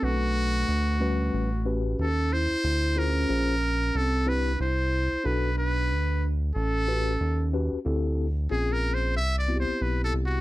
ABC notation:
X:1
M:4/4
L:1/16
Q:"Swing 16ths" 1/4=92
K:Ador
V:1 name="Muted trumpet"
F8- F2 z2 A2 c2- | c2 _B6 A2 =B2 c4 | B2 B4 z2 A6 z2 | z4 (3_A2 _B2 c2 (3e2 d2 c2 (3=B2 =A2 F2 |]
V:2 name="Tine electric piano"
[DFAB]6 [G,^CFB]2 z2 [CFGB]2 z4 | z2 [^C=F^G=c]2 [_DF_Ac]2 z4 [=CE=GB]2 z4 | [DFAB]2 z8 [^CFGB]2 z2 [CFGB]2 | [CEGA]2 z2 [C_D=F_A]4 z2 [B,CE^FG]6 |]
V:3 name="Vibraphone"
A,8- A,2 z2 ^C2 E2- | E2 ^C6 =C2 D2 E4 | D2 D4 z2 ^C6 z2 | z16 |]
V:4 name="Analog synth bass" clef=bass
B,,,4 D,,4 A,,,4 ^D,,3 D,, | D,,4 _B,,,4 C,,4 C,,3 C,, | B,,,4 D,,4 A,,,4 ^D,,3 D,, | D,,4 _B,,,4 C,,3 =B,,, B,,,2 C,,2 |]